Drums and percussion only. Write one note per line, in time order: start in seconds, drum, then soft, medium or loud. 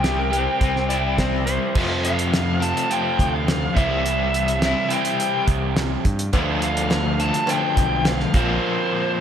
0.04 snare medium
0.04 closed hi-hat medium
0.33 closed hi-hat medium
0.61 kick loud
0.61 closed hi-hat medium
0.76 snare soft
0.90 closed hi-hat medium
1.18 kick medium
1.18 snare loud
1.18 closed hi-hat medium
1.47 closed hi-hat medium
1.75 kick loud
1.75 crash loud
2.05 closed hi-hat medium
2.19 closed hi-hat medium
2.34 snare loud
2.34 closed hi-hat medium
2.62 closed hi-hat medium
2.77 closed hi-hat medium
2.91 closed hi-hat medium
3.19 kick medium
3.19 closed hi-hat medium
3.48 snare loud
3.48 closed hi-hat medium
3.77 kick loud
3.77 closed hi-hat medium
4.06 closed hi-hat medium
4.34 closed hi-hat medium
4.48 closed hi-hat medium
4.62 snare medium
4.62 closed hi-hat medium
4.90 closed hi-hat medium
5.05 closed hi-hat medium
5.20 closed hi-hat medium
5.48 kick medium
5.48 closed hi-hat medium
5.76 snare loud
5.76 closed hi-hat medium
6.05 kick medium
6.05 closed hi-hat medium
6.19 closed hi-hat medium
6.33 kick loud
6.33 closed hi-hat medium
6.33 cowbell medium
6.62 closed hi-hat medium
6.77 closed hi-hat medium
6.90 snare loud
6.90 closed hi-hat medium
6.90 cowbell medium
7.20 closed hi-hat medium
7.34 closed hi-hat medium
7.47 closed hi-hat medium
7.47 cowbell medium
7.77 kick medium
7.77 closed hi-hat medium
8.05 snare loud
8.05 closed hi-hat medium
8.05 cowbell medium
8.20 snare soft
8.34 kick loud
8.34 closed hi-hat medium